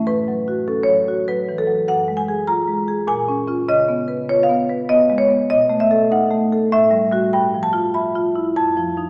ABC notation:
X:1
M:3/4
L:1/16
Q:1/4=99
K:C#phr
V:1 name="Marimba"
B4 A c3 B2 A2 | f2 g2 ^a4 _a4 | ^d4 c ^e3 d2 c2 | [K:Bmix] d2 e2 f4 e4 |
=g2 a2 b4 a4 |]
V:2 name="Marimba"
(3A,,2 F,2 F2 (3C2 F,2 F2 (3F,2 E,2 F,2 | (3F,,2 G,2 G2 (3^E2 G,2 G2 (3_B,,2 _D2 [D=F]2 | (3C,2 B,2 B2 (3^E2 B,2 B2 (3B,2 G,2 B,2 | [K:Bmix] (3B,,2 A,2 A2 (3D2 A,2 A2 (3A,,2 =G,2 [G,F]2 |
(3=G,,2 =F,2 =F2 (3e2 F2 E2 (3=F,,2 F,2 [F,_E]2 |]